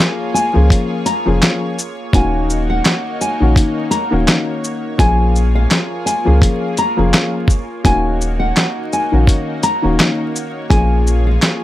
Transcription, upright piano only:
0.00 0.43 F3 medium
0.00 0.43 A#3 medium
0.00 0.44 C#4 medium
0.00 0.44 G#4 loud
0.53 1.02 F3 loud
0.53 1.02 A#3 medium
0.53 1.02 C#4 medium
0.53 1.03 G#4 loud
1.25 1.74 F3 loud
1.25 1.74 A#3 medium
1.25 1.74 C#4 medium
1.25 1.75 G#4 loud
2.13 3.29 D#3 loud
2.13 3.29 A#3 medium
2.13 3.30 C#4 medium
2.13 3.30 F#4 loud
3.40 3.88 D#3 medium
3.40 3.88 A#3 medium
3.40 3.89 C#4 medium
3.40 3.89 F#4 medium
4.11 4.92 D#3 loud
4.11 4.92 A#3 medium
4.11 4.93 C#4 medium
4.11 4.93 F#4 loud
4.98 6.14 F3 medium
4.98 6.15 A#3 medium
4.98 6.15 C#4 medium
4.98 6.15 G#4 loud
6.25 6.73 F3 medium
6.25 6.74 A#3 medium
6.25 6.74 C#4 medium
6.25 6.74 G#4 loud
6.97 7.45 F3 medium
6.97 7.45 A#3 medium
6.97 7.45 C#4 medium
6.97 7.46 G#4 loud
7.84 9.00 D#3 medium
7.84 9.01 A#3 medium
7.84 9.01 C#4 medium
7.84 9.01 F#4 loud
9.12 9.60 D#3 medium
9.12 9.60 A#3 medium
9.12 9.60 C#4 medium
9.12 9.61 F#4 loud
9.82 10.64 D#3 medium
9.82 10.64 A#3 medium
9.82 10.64 C#4 medium
9.82 10.65 F#4 loud
10.70 11.64 F3 medium
10.70 11.64 A#3 medium
10.70 11.64 C#4 medium
10.70 11.64 G#4 loud

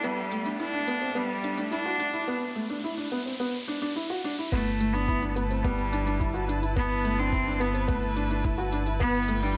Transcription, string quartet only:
0.00 2.24 B3 medium
0.00 2.24 G4 medium
0.00 2.24 A4 medium
0.00 2.24 E5 medium
4.52 9.57 E4 medium
4.52 9.57 B4 medium
4.52 8.97 A5 medium
9.00 9.57 G5 medium

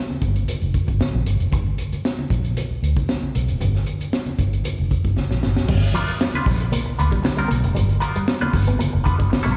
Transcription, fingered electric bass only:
0.22 0.46 G1 medium
0.48 muted fingered electric bass stroke soft
0.62 0.73 F1 medium
0.89 0.99 G1 medium
1.14 1.25 A#1 medium
1.26 1.39 G1 medium
1.41 1.53 F1 medium
1.53 1.76 G1 medium
1.93 muted fingered electric bass stroke soft
2.31 2.54 A#1 medium
2.71 muted fingered electric bass stroke soft
2.83 2.95 D2 medium
3.36 3.48 B1 medium
3.49 3.60 F1 medium
3.61 3.84 G1 loud
4.01 muted fingered electric bass stroke soft
4.39 4.62 G1 medium
4.66 muted fingered electric bass stroke soft
4.80 4.90 F1 medium
5.05 5.16 G1 medium
5.31 5.42 A#1 medium
5.43 5.57 G1 medium
5.57 5.68 F1 medium
5.69 5.92 G1 loud
6.09 muted fingered electric bass stroke soft
6.46 6.70 A#1 medium
6.87 muted fingered electric bass stroke soft
7.00 7.11 D2 loud
7.51 7.63 B1 medium
7.65 7.75 F1 medium
7.77 8.00 G1 loud
8.17 muted fingered electric bass stroke medium
8.54 8.77 G1 medium
8.81 muted fingered electric bass stroke soft
8.95 9.05 F1 medium
9.20 9.31 G1 medium
9.46 9.57 A#1 medium

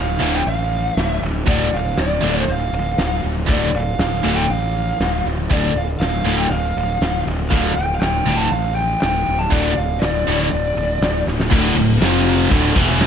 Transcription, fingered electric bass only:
0.00 0.17 D1 medium
0.21 0.42 D1 medium
0.47 0.89 A1 medium
0.97 1.18 D1 medium
1.22 1.43 D1 medium
1.47 1.68 D1 loud
1.73 1.94 D1 medium
1.98 2.19 D1 medium
2.23 2.44 D1 medium
2.48 2.69 D1 medium
2.73 2.94 D1 medium
2.98 3.19 D1 medium
3.24 3.45 D1 medium
3.49 3.70 D1 medium
3.73 3.95 D1 medium
3.99 4.20 D1 medium
4.25 4.46 D1 medium
4.50 4.92 A1 medium
5.00 5.21 D1 medium
5.26 5.47 D1 medium
5.51 5.72 D1 medium
5.74 5.96 D1 medium
6.00 6.21 D1 medium
6.24 6.46 D1 medium
6.50 6.72 D1 medium
6.76 6.97 D1 medium
7.01 7.22 D1 medium
7.27 7.48 D1 medium
7.53 7.73 D1 medium
7.77 7.98 D1 medium
8.02 8.23 D1 medium
8.26 8.47 D1 medium
8.52 8.94 A1 medium
9.02 9.23 D1 medium
9.28 9.49 D1 medium
9.52 9.73 D1 medium
9.78 9.98 D1 medium
10.03 10.23 D1 medium
10.28 10.48 D1 medium
10.53 10.73 D1 medium
10.76 10.97 D1 medium
11.01 11.22 D1 loud
11.26 11.47 D1 medium
11.52 11.75 D1 medium
11.76 11.99 D1 medium
12.01 12.47 F1 loud
12.52 12.75 D1 medium
12.76 13.07 E1 loud

